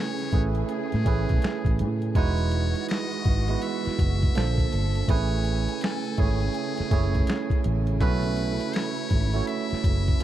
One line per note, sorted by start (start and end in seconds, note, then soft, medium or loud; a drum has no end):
0.00 2.13 C#3 medium
0.00 0.24 A3 medium
0.00 2.13 A3 medium
0.00 0.24 C#4 medium
0.00 0.24 E4 medium
0.00 0.25 G#4 medium
0.00 2.13 G#4 medium
0.00 0.28 B4 loud
0.00 0.45 C#5 loud
0.19 snare soft
0.19 closed hi-hat soft
0.32 0.62 A1 medium
0.32 1.00 A3 medium
0.32 1.00 C#4 medium
0.32 1.00 E4 medium
0.32 1.01 G#4 medium
0.32 1.01 B4 medium
0.32 kick medium
0.32 closed hi-hat medium
0.55 closed hi-hat soft
0.69 1.76 G#4 medium
0.69 closed hi-hat medium
0.92 1.04 A2 loud
0.92 snare soft
0.92 closed hi-hat soft
1.05 1.24 A1 medium
1.05 2.06 A3 medium
1.05 2.07 C#4 medium
1.05 2.07 E4 medium
1.05 2.07 G#4 medium
1.05 2.08 B4 medium
1.05 kick medium
1.05 closed hi-hat medium
1.29 1.41 B1 medium
1.29 kick medium
1.29 closed hi-hat soft
1.42 finger snap medium
1.42 muted fingered electric bass stroke soft
1.42 snare loud
1.42 closed hi-hat medium
1.65 1.82 A1 medium
1.65 kick loud
1.65 closed hi-hat soft
1.79 2.18 A2 loud
1.79 closed hi-hat medium
2.02 closed hi-hat medium
2.15 2.73 E1 loud
2.15 4.33 E3 medium
2.15 4.33 G#3 medium
2.15 3.31 G#3 loud
2.15 3.31 D#4 medium
2.15 3.32 E4 medium
2.15 4.33 F#4 medium
2.15 3.32 F#4 medium
2.15 3.32 B4 loud
2.15 2.85 C#5 loud
2.15 kick loud
2.15 closed hi-hat medium
2.38 closed hi-hat medium
2.51 closed hi-hat medium
2.75 closed hi-hat medium
2.88 3.64 D#5 loud
2.88 finger snap medium
2.88 snare loud
2.88 closed hi-hat medium
3.11 closed hi-hat soft
3.25 3.54 G#1 medium
3.25 kick loud
3.25 closed hi-hat medium
3.48 4.35 G#3 medium
3.48 4.35 B3 medium
3.48 4.36 E4 medium
3.48 4.36 F#4 medium
3.48 4.36 B4 medium
3.48 closed hi-hat soft
3.62 5.11 E5 loud
3.62 closed hi-hat medium
3.85 muted fingered electric bass stroke soft
3.85 snare soft
3.85 closed hi-hat soft
3.99 4.28 F#1 medium
3.99 kick medium
3.99 closed hi-hat medium
4.22 kick medium
4.22 closed hi-hat soft
4.35 4.65 A#1 loud
4.35 5.07 D3 medium
4.35 5.02 A#3 medium
4.35 5.07 A#3 medium
4.35 5.02 D4 medium
4.35 5.03 F4 medium
4.35 5.07 A4 medium
4.35 5.03 A4 medium
4.35 5.03 C5 medium
4.35 finger snap medium
4.35 snare loud
4.35 closed hi-hat medium
4.58 kick medium
4.58 closed hi-hat soft
4.73 5.01 G1 medium
4.73 closed hi-hat medium
4.95 closed hi-hat medium
5.08 5.66 A1 loud
5.08 10.17 C#3 medium
5.08 6.09 A3 medium
5.08 7.98 A3 medium
5.08 5.17 C4 medium
5.08 6.10 E4 medium
5.08 6.10 G#4 medium
5.08 6.10 B4 loud
5.08 5.84 C#5 loud
5.08 7.98 G#5 medium
5.08 kick loud
5.08 closed hi-hat medium
5.15 6.13 C#4 medium
5.31 closed hi-hat medium
5.45 closed hi-hat medium
5.68 closed hi-hat medium
5.81 6.21 A4 loud
5.81 finger snap medium
5.81 snare loud
5.81 closed hi-hat medium
6.04 closed hi-hat soft
6.18 6.47 G#1 loud
6.18 6.85 A3 medium
6.18 6.85 C#4 medium
6.18 6.86 E4 medium
6.18 6.86 G#4 medium
6.18 7.65 G#4 medium
6.18 6.86 C#5 medium
6.18 kick loud
6.18 closed hi-hat medium
6.40 closed hi-hat soft
6.54 closed hi-hat medium
6.78 muted fingered electric bass stroke soft
6.78 snare soft
6.78 closed hi-hat medium
6.91 7.20 F#1 loud
6.91 7.92 A3 medium
6.91 7.92 C#4 medium
6.91 7.93 E4 medium
6.91 7.93 G#4 medium
6.91 7.93 C#5 medium
6.91 kick medium
6.91 closed hi-hat medium
7.14 kick loud
7.14 closed hi-hat soft
7.27 finger snap medium
7.27 snare loud
7.27 closed hi-hat medium
7.50 kick loud
7.50 closed hi-hat soft
7.64 8.02 A1 medium
7.64 closed hi-hat medium
7.87 closed hi-hat medium
8.00 8.59 B1 loud
8.00 9.16 A3 medium
8.00 10.18 A3 medium
8.00 9.16 C#4 medium
8.00 10.18 E4 loud
8.00 9.17 E4 medium
8.00 9.17 F#4 medium
8.00 8.76 B4 loud
8.00 9.17 B4 loud
8.00 kick loud
8.00 closed hi-hat medium
8.23 closed hi-hat medium
8.37 closed hi-hat medium
8.60 closed hi-hat medium
8.73 9.47 C#5 loud
8.73 finger snap medium
8.73 snare loud
8.73 closed hi-hat medium
8.97 closed hi-hat soft
9.10 9.40 G#1 medium
9.10 kick medium
9.10 closed hi-hat medium
9.33 10.20 A3 medium
9.33 10.19 C#4 medium
9.33 10.21 E4 medium
9.33 10.21 F#4 medium
9.33 10.21 C#5 medium
9.33 closed hi-hat soft
9.47 10.23 E5 loud
9.47 closed hi-hat medium
9.71 muted fingered electric bass stroke soft
9.71 snare soft
9.71 closed hi-hat soft
9.84 10.13 F#1 loud
9.84 kick loud
9.84 closed hi-hat medium
10.08 kick loud
10.08 closed hi-hat soft
10.20 10.23 D3 medium
10.20 10.23 A#3 medium
10.20 10.23 A4 medium